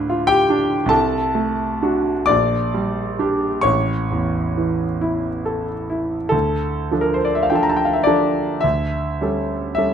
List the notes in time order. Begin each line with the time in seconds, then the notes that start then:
Already playing: D2 A2 A3 D4 F5 F6
0.10 F4
0.27 G4 G5
0.50 D4
0.86 C2 A4 A5
1.35 A3
1.82 D4 F#4
2.26 A#1 D5 D6
2.74 G3
3.19 D4 G4
3.61 A1 C#5 C#6
4.11 E2
4.57 E3
5.01 E4
5.45 A4
5.90 E4
6.29 D2 A4
6.91 F3 D4 A4
7.01 A#4
7.14 C5
7.25 D5
7.35 E5
7.43 F5
7.50 F3 D4 A4 G5
7.55 A5
7.63 A#5
7.70 A5
7.76 G5
7.85 F5
7.93 E5
8.04 F3 D4 A4 D5
8.61 D2 E5
9.21 G3 C#4 A4
9.75 G3 C#4 A4 E5